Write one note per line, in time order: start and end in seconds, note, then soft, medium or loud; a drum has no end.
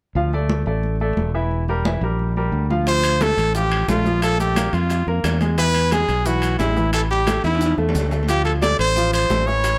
0.15 0.63 D2 medium
0.15 0.30 F3 medium
0.15 0.30 F4 medium
0.15 0.30 F5 medium
0.15 high conga soft
0.33 0.61 A3 medium
0.33 0.61 A4 medium
0.33 0.61 D5 medium
0.33 high conga soft
0.49 high conga medium
0.66 1.13 A1 medium
0.66 0.95 A3 medium
0.66 0.95 A4 medium
0.66 0.95 D5 medium
0.66 high conga soft
0.83 high conga soft
1.00 1.29 A3 medium
1.00 1.29 A4 medium
1.00 1.29 D5 medium
1.00 high conga soft
1.17 1.96 E1 medium
1.17 high conga medium
1.34 1.62 E3 medium
1.34 1.63 E4 medium
1.34 1.63 E5 medium
1.51 high conga soft
1.68 1.83 G3 medium
1.68 1.83 G4 medium
1.68 1.83 A#4 medium
1.68 high conga soft
1.85 1.99 E3 medium
1.85 2.00 E4 medium
1.85 2.00 E5 medium
1.85 high conga loud
2.01 2.49 A#1 loud
2.01 2.31 G3 medium
2.01 2.31 G4 medium
2.01 2.31 A#4 medium
2.01 high conga soft
2.19 high conga soft
2.36 2.64 G3 medium
2.36 2.64 G4 medium
2.36 2.65 A#4 medium
2.36 high conga soft
2.52 3.32 D2 medium
2.52 high conga soft
2.70 2.84 F3 medium
2.70 2.84 F4 medium
2.70 2.84 F5 medium
2.70 high conga medium
2.87 3.15 F3 medium
2.87 3.15 F4 medium
2.87 3.24 C5 loud
2.87 high bongo medium
2.87 high conga soft
2.87 high timbale medium
2.87 maracas medium
3.03 high bongo soft
3.03 high conga soft
3.03 high timbale medium
3.03 maracas medium
3.21 3.49 A3 medium
3.21 3.49 A4 medium
3.21 3.55 A4 loud
3.21 high bongo medium
3.21 high conga medium
3.21 high timbale medium
3.21 low timbale medium
3.21 maracas medium
3.37 3.85 A1 medium
3.37 high bongo soft
3.37 high conga soft
3.37 high timbale medium
3.37 maracas soft
3.55 3.82 F3 medium
3.55 3.83 F4 medium
3.55 3.87 G4 medium
3.55 high bongo medium
3.55 high conga soft
3.55 maracas medium
3.72 high conga soft
3.72 high timbale medium
3.88 4.67 A#1 medium
3.88 4.02 A3 medium
3.88 4.21 F4 medium
3.88 4.03 A4 medium
3.88 high bongo medium
3.88 low bongo medium
3.88 high conga medium
3.88 low timbale medium
3.88 maracas medium
4.06 4.34 F3 medium
4.06 4.34 F4 medium
4.06 high bongo soft
4.06 high conga medium
4.06 maracas soft
4.22 4.39 A4 loud
4.22 high bongo medium
4.22 high conga soft
4.22 high timbale medium
4.22 maracas medium
4.40 4.54 A3 medium
4.40 4.75 G4 medium
4.40 4.54 A4 medium
4.40 high bongo soft
4.40 high conga soft
4.40 maracas medium
4.56 4.70 A#3 medium
4.56 4.71 A#4 medium
4.56 high bongo medium
4.56 high conga medium
4.56 high timbale loud
4.56 low timbale medium
4.56 maracas medium
4.73 5.04 F2 medium
4.73 5.07 F4 medium
4.73 5.01 F4 medium
4.73 5.02 F5 medium
4.73 high conga soft
4.73 high timbale medium
4.73 maracas soft
4.90 high bongo medium
4.90 high conga soft
4.90 high timbale medium
4.90 maracas medium
5.07 5.23 F2 medium
5.07 5.35 A#3 medium
5.07 5.35 A#4 medium
5.07 high bongo soft
5.07 high conga soft
5.24 6.03 E2 medium
5.24 high bongo medium
5.24 low bongo medium
5.24 high conga soft
5.24 high timbale loud
5.24 low timbale medium
5.24 maracas medium
5.41 5.55 G#3 medium
5.41 5.55 G#4 medium
5.41 high bongo soft
5.41 high conga medium
5.41 high timbale medium
5.41 maracas soft
5.58 5.86 E3 medium
5.58 5.86 E4 medium
5.58 5.90 B4 loud
5.58 high bongo medium
5.58 high conga soft
5.58 high timbale medium
5.58 maracas medium
5.74 high bongo soft
5.74 high conga soft
5.74 high timbale medium
5.91 6.20 G#3 medium
5.91 6.28 G#4 medium
5.91 6.20 G#4 medium
5.91 high bongo medium
5.91 high conga medium
5.91 high timbale medium
5.91 low timbale medium
5.91 maracas medium
6.08 6.56 B1 medium
6.08 high bongo soft
6.08 high conga soft
6.08 high timbale medium
6.08 maracas soft
6.25 6.53 E3 medium
6.25 6.54 E4 medium
6.25 6.58 F#4 medium
6.25 high bongo medium
6.25 high conga soft
6.25 maracas medium
6.42 high conga soft
6.42 high timbale medium
6.42 maracas medium
6.59 7.38 A1 medium
6.59 6.73 G#3 medium
6.59 6.91 E4 medium
6.59 6.74 G#4 medium
6.59 high bongo medium
6.59 low bongo medium
6.59 high conga medium
6.59 low timbale medium
6.59 maracas medium
6.76 7.04 E3 medium
6.76 7.04 E4 medium
6.76 high bongo soft
6.76 high conga medium
6.76 maracas soft
6.93 7.01 A4 medium
6.93 high bongo medium
6.93 high conga soft
6.93 high timbale medium
6.93 maracas medium
7.10 7.24 G3 medium
7.10 7.42 G4 medium
7.10 7.25 G4 medium
7.10 high bongo soft
7.10 high conga soft
7.27 7.41 A3 medium
7.27 7.42 A4 medium
7.27 high bongo medium
7.27 high conga medium
7.27 high timbale medium
7.27 low timbale medium
7.27 maracas medium
7.44 7.75 E2 medium
7.44 7.76 E4 medium
7.44 7.72 E4 medium
7.44 7.72 E5 medium
7.44 high conga soft
7.44 high timbale medium
7.44 maracas soft
7.55 high timbale medium
7.61 high bongo medium
7.61 high conga soft
7.61 maracas medium
7.66 high timbale medium
7.78 7.94 E2 medium
7.78 8.06 A3 medium
7.78 8.06 A4 medium
7.78 high bongo soft
7.78 high conga soft
7.89 low timbale medium
7.95 8.74 D2 medium
7.95 high bongo medium
7.95 low bongo medium
7.95 high conga soft
7.95 maracas medium
8.00 low timbale medium
8.11 8.26 A3 medium
8.11 8.26 A4 medium
8.11 high bongo soft
8.11 low timbale medium
8.11 maracas soft
8.23 low timbale medium
8.29 8.56 F3 medium
8.29 8.57 F4 medium
8.29 8.44 G4 loud
8.29 high bongo medium
8.29 high conga soft
8.29 high timbale medium
8.29 maracas medium
8.45 8.53 A4 medium
8.45 high bongo soft
8.45 high conga soft
8.45 high timbale medium
8.62 8.90 A3 medium
8.62 8.91 A4 medium
8.62 8.78 D5 loud
8.62 high bongo medium
8.62 high conga medium
8.62 high timbale medium
8.62 low timbale medium
8.62 maracas medium
8.79 9.26 A1 loud
8.79 9.11 C5 loud
8.79 high bongo soft
8.79 high conga soft
8.79 high timbale medium
8.79 maracas soft
8.96 9.24 F3 medium
8.96 9.24 F4 medium
8.96 high bongo medium
8.96 high conga soft
8.96 maracas medium
9.13 9.48 C5 medium
9.13 high conga soft
9.13 high timbale medium
9.13 maracas medium
9.30 9.79 A1 medium
9.30 9.44 A3 medium
9.30 9.44 A4 medium
9.30 high bongo medium
9.30 low bongo medium
9.30 high conga medium
9.30 low timbale medium
9.30 maracas medium
9.47 9.75 E3 medium
9.47 9.75 E4 medium
9.47 9.79 C#5 loud
9.47 high bongo soft
9.47 maracas soft
9.64 high bongo medium
9.64 high conga soft
9.64 high timbale medium
9.64 maracas medium